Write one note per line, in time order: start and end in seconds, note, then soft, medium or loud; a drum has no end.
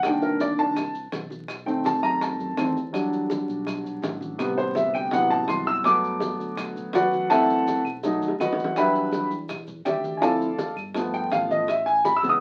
0.00 0.52 C2 medium
0.00 high bongo medium
0.00 claves medium
0.04 0.56 D#3 medium
0.04 0.56 A#3 medium
0.04 0.57 D4 medium
0.04 0.23 G5 medium
0.04 maracas medium
0.22 0.40 A#4 medium
0.22 high conga soft
0.22 maracas soft
0.40 0.58 D5 medium
0.40 high bongo medium
0.40 high conga medium
0.40 maracas medium
0.57 1.09 C2 medium
0.57 0.75 D#3 medium
0.57 0.75 A#3 soft
0.57 0.75 D4 medium
0.57 0.93 A5 medium
0.57 high conga soft
0.57 maracas soft
0.76 high bongo medium
0.76 high conga soft
0.76 low conga medium
0.76 claves medium
0.76 maracas medium
0.95 high conga soft
0.95 maracas soft
1.12 1.98 B1 medium
1.12 high bongo medium
1.12 low bongo medium
1.12 high conga medium
1.12 maracas medium
1.30 high conga medium
1.30 maracas soft
1.48 high bongo medium
1.48 high conga soft
1.48 claves medium
1.48 maracas medium
1.66 2.55 D#3 soft
1.66 2.56 A3 soft
1.66 2.56 C4 medium
1.66 1.85 G5 medium
1.66 high conga soft
1.66 maracas soft
1.85 2.03 A5 medium
1.85 high bongo medium
1.85 high conga medium
1.85 maracas medium
2.03 2.37 F#2 medium
2.03 2.21 A#5 loud
2.03 high bongo soft
2.03 high conga soft
2.03 claves medium
2.03 maracas soft
2.21 2.73 A5 medium
2.21 high bongo medium
2.21 high conga soft
2.21 maracas medium
2.39 2.57 F#2 medium
2.39 high bongo soft
2.39 high conga soft
2.39 maracas soft
2.57 3.43 E2 medium
2.57 2.74 D#3 soft
2.57 2.74 A3 soft
2.57 2.74 C4 medium
2.57 high bongo medium
2.57 low bongo medium
2.57 high conga medium
2.57 claves medium
2.57 maracas medium
2.75 high bongo soft
2.75 maracas soft
2.93 4.35 F#3 medium
2.93 4.35 G3 soft
2.93 4.36 D4 medium
2.93 high bongo medium
2.93 high conga soft
2.93 claves medium
2.93 maracas medium
3.13 high conga soft
3.13 maracas soft
3.30 high bongo medium
3.30 high conga medium
3.30 maracas medium
3.48 3.99 B1 medium
3.48 high conga soft
3.48 maracas soft
3.67 high bongo medium
3.67 high conga soft
3.67 low conga medium
3.67 claves medium
3.67 maracas medium
3.84 high conga soft
3.84 low conga medium
3.84 maracas soft
4.02 4.88 A1 medium
4.02 high bongo medium
4.02 low bongo medium
4.02 high conga medium
4.02 maracas medium
4.21 high conga medium
4.21 maracas soft
4.38 5.08 C3 medium
4.38 5.08 G3 medium
4.38 5.09 B3 medium
4.38 high bongo medium
4.38 claves medium
4.38 maracas medium
4.57 4.75 C5 medium
4.57 high conga soft
4.57 maracas soft
4.75 4.94 E5 medium
4.75 high bongo medium
4.75 high conga loud
4.75 maracas medium
4.93 5.28 D2 medium
4.93 5.12 G5 loud
4.93 high bongo soft
4.93 high conga soft
4.93 claves medium
4.93 maracas soft
5.11 5.81 C3 medium
5.11 5.82 E3 medium
5.11 5.82 F#3 medium
5.11 5.82 B3 medium
5.11 5.31 F#5 medium
5.11 high bongo medium
5.11 maracas medium
5.30 5.47 A1 medium
5.30 5.48 A5 medium
5.30 high bongo soft
5.30 maracas soft
5.48 6.34 G1 medium
5.48 5.67 C6 medium
5.48 high bongo medium
5.48 low bongo medium
5.48 high conga medium
5.48 claves medium
5.48 maracas medium
5.66 5.85 E6 loud
5.66 high bongo soft
5.66 maracas soft
5.84 7.26 F#3 medium
5.84 7.27 A3 medium
5.84 7.27 B3 medium
5.84 6.54 D6 loud
5.84 high bongo medium
5.84 high conga soft
5.84 claves medium
5.84 maracas medium
6.03 high conga soft
6.03 maracas soft
6.20 high bongo medium
6.20 high conga loud
6.20 maracas medium
6.39 6.90 D2 medium
6.39 high conga soft
6.39 maracas soft
6.57 high bongo medium
6.57 high conga soft
6.57 low conga medium
6.57 claves medium
6.57 maracas medium
6.76 high conga soft
6.76 low conga medium
6.76 maracas soft
6.93 7.79 F#2 medium
6.93 7.29 F#4 medium
6.93 7.29 B4 medium
6.93 7.29 D5 medium
6.93 7.28 F#5 medium
6.93 high bongo medium
6.93 low bongo medium
6.93 high conga medium
6.93 maracas medium
7.13 high conga medium
7.13 maracas soft
7.29 7.82 E3 medium
7.29 7.82 A3 medium
7.29 7.82 C4 medium
7.29 7.81 A4 medium
7.29 7.82 E5 medium
7.29 7.81 F#5 medium
7.29 7.81 A5 loud
7.29 high bongo medium
7.29 high conga soft
7.29 claves medium
7.29 maracas medium
7.50 high conga soft
7.50 maracas soft
7.68 high bongo medium
7.68 high conga medium
7.68 maracas medium
7.84 8.19 B1 medium
7.84 high bongo soft
7.84 high conga soft
7.84 claves medium
7.84 maracas soft
8.03 8.28 F#3 medium
8.03 8.28 A3 medium
8.03 8.29 D#4 medium
8.03 high bongo medium
8.03 high conga soft
8.03 maracas medium
8.20 8.38 D#2 medium
8.20 high conga soft
8.20 maracas soft
8.28 high bongo medium
8.39 9.25 E2 medium
8.39 8.74 F#4 medium
8.39 8.74 B4 medium
8.39 8.74 D#5 medium
8.39 8.74 F#5 medium
8.39 low bongo loud
8.39 high conga medium
8.39 claves medium
8.39 maracas medium
8.52 low bongo medium
8.59 high conga medium
8.59 maracas soft
8.64 low bongo loud
8.76 9.29 F#3 medium
8.76 9.29 G3 medium
8.76 9.29 D4 medium
8.76 9.28 B4 medium
8.76 9.28 E5 medium
8.76 9.28 G5 medium
8.76 9.28 B5 loud
8.76 high bongo medium
8.76 claves medium
8.76 maracas medium
8.95 high conga soft
8.95 maracas soft
9.12 high bongo medium
9.12 high conga medium
9.12 maracas medium
9.30 9.82 E2 medium
9.30 high conga soft
9.30 maracas soft
9.49 high bongo medium
9.49 high conga soft
9.49 low conga medium
9.49 claves medium
9.49 maracas medium
9.67 high conga soft
9.67 low conga medium
9.67 maracas soft
9.85 10.71 D2 medium
9.85 10.20 G4 medium
9.85 10.20 D5 medium
9.85 10.20 E5 medium
9.85 10.20 G5 medium
9.85 high bongo medium
9.85 low bongo medium
9.85 high conga medium
9.85 maracas medium
10.04 high conga medium
10.04 maracas soft
10.17 10.46 F3 medium
10.17 10.46 C4 medium
10.17 10.20 G#5 medium
10.22 10.46 E4 medium
10.22 10.73 A4 medium
10.22 10.73 D5 medium
10.22 10.73 F5 medium
10.22 10.73 A5 medium
10.22 high bongo medium
10.22 high conga soft
10.22 claves medium
10.22 maracas medium
10.40 high conga soft
10.40 maracas soft
10.59 high bongo medium
10.59 high conga medium
10.59 maracas medium
10.76 11.28 G1 medium
10.76 high bongo soft
10.76 high conga soft
10.76 claves medium
10.76 maracas soft
10.94 11.65 F3 medium
10.94 11.65 A3 soft
10.94 11.65 B3 medium
10.94 high bongo medium
10.94 high conga soft
10.94 maracas medium
11.13 11.32 G5 medium
11.13 high bongo soft
11.13 high conga soft
11.13 maracas soft
11.31 12.17 A1 medium
11.31 11.50 F5 medium
11.31 high bongo medium
11.31 low bongo medium
11.31 high conga medium
11.31 claves medium
11.31 maracas medium
11.50 11.68 D#5 medium
11.50 high bongo soft
11.50 high conga medium
11.50 maracas soft
11.68 11.87 E5 medium
11.68 high bongo medium
11.68 high conga soft
11.68 claves medium
11.68 maracas medium
11.86 12.04 G#5 medium
11.86 high conga soft
11.86 maracas soft
12.05 12.17 B5 medium
12.05 high bongo medium
12.05 high conga medium
12.05 maracas medium
12.16 12.29 E6 loud
12.22 12.40 E2 medium
12.22 12.40 C#3 medium
12.22 12.40 G#3 medium
12.22 12.40 B3 medium
12.22 high conga soft
12.22 maracas soft
12.29 12.40 D#6 loud